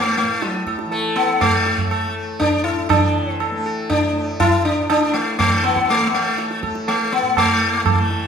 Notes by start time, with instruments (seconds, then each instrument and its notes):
Already playing: tanpura A2 E3 A3, sitar A3
0.17 sitar A3
0.23 tanpura A2
0.42 sitar A4, tabla te
0.47 sitar F#3
0.54 tabla te
0.67 sitar A4, tabla ke
0.79 tabla te
0.84 tanpura E3
0.91 sitar A3 A4, tabla tin
1.16 sitar B3 A4, tabla na
1.41 sitar A3 A4, tabla na, tabla ge
1.46 tanpura A3
1.66 sitar A4, tabla te
1.78 tabla ge
1.91 sitar A4, tabla na
2.08 tanpura A3
2.40 sitar D4, tabla tin, tabla ge
2.64 sitar E4 A4
2.69 tanpura A2
2.89 tanpura E3, sitar D4, tabla na, tabla ge
3.37 sitar B3 A4, tabla na
3.52 tanpura A3
3.66 sitar A4
3.90 sitar D4, tabla tin, tabla ge
4.13 tanpura A3
4.40 sitar E4, tabla na, tabla ge
4.65 sitar D4
4.74 tanpura A2
4.90 sitar D4, tabla na
5.14 sitar A3
5.37 tanpura E3, sitar A3, tabla tin, tabla ge
5.64 sitar B3, tabla na
5.76 tabla ke
5.89 sitar A3, tabla tin
5.99 tanpura A3
6.07 sitar B3
6.14 sitar A3
6.38 sitar A4, tabla te
6.51 tabla te
6.61 tanpura A3, sitar A4, tabla ke
6.75 tabla te
6.88 sitar A3, tabla tin
7.12 sitar B3
7.22 tanpura A2
7.37 sitar A3, tabla na, tabla ge
7.61 sitar A4
7.82 tanpura E3, sitar A4
7.86 tabla na, tabla ge
8.11 tabla te